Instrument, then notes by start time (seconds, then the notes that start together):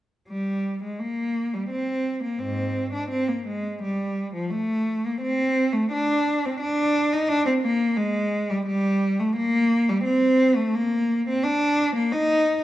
cello
0.29 G3
0.83 G#3
0.99 A#3
1.54 G3
1.70 C4
2.23 A#3
2.38 G#2 C4
2.93 D4
3.10 C4
3.28 A#3
3.48 G#3
3.83 G3
4.34 F3
4.50 A3
5.06 A#3
5.22 C4
5.73 A3
5.92 D4
6.46 C4
6.60 D4
7.13 D#4
7.29 D4
7.46 C4
7.61 A#3
7.97 G#3
8.50 G3
8.67 G3
9.20 A3
9.37 A#3
9.89 G3
10.05 C4
10.56 A3
10.75 A#3
11.28 C4
11.43 D4
11.95 A#3
12.12 D#4